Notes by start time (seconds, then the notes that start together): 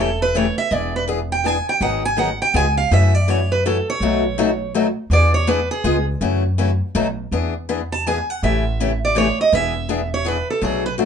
Already playing: E1
0.01 A4
0.22 B4
0.35 C#3 E3 A3 C#4 G4 C#5
0.58 E5
0.71 E1 E3 B3 D4 G#4 D5
0.96 B4
1.08 E3 B3 D4 G#4
1.32 G5
1.44 E3 B3 D4 G#4 G#5
1.69 G5
1.81 G#1 D#3 F#3 B3 D#4 G#4 F#5
2.05 G#5
2.17 D#3 F#3 B3 D#4 G#4 F#5
2.42 G5
2.54 C#2 C#3 G#3 B3 F4 G#4 G#5
2.77 F5
2.91 F#2 C#3 E3 A3 C#4 F#4 E5
3.15 D5
3.28 C#3 E3 A3 C#4 F#4 C#5
3.52 B4
3.66 C#3 E3 A3 C#4 F#4 A4
3.90 C#5
4.00 B1 B2 F#3 A3 D#4 F#4
4.38 B2 F#3 A3 D#4 F#4
4.74 B2 F#3 A3 D#4 F#4
5.10 E2 E3 B3 D4 G#4 D5
5.34 C#5
5.47 E3 B3 D4 G#4 B4
5.71 G#4
5.84 C#2 C#3 G#3 B3 F4 G#4
6.21 F#2 C#3 E3 A3 C#4 F#4
6.58 C#3 E3 A3 C#4 F#4
6.95 B1 B2 F#3 A3 D#4 F#4
7.32 E2 E3 B3 D4 G#4
7.69 E3 B3 D4 G#4
7.92 A5
8.07 E3 B3 D4 G#4 G#5
8.30 F#5
8.43 A1 C#3 E3 A3 C#4 G4 E5
8.80 C#3 E3 A3 C#4 G4
9.05 D5
9.15 C#3 E3 A3 C#4 G4 C#5
9.41 D#5
9.52 E1 E3 B3 D4 G#4 E5
9.89 E3 B3 D4 G#4
10.14 C#5
10.25 E3 B3 D4 G#4 B4
10.50 A4
10.61 B1 B2 F#3 A3 D4 F#4 G#4
10.86 B4
10.98 B2 F#3 A3 D4 F#4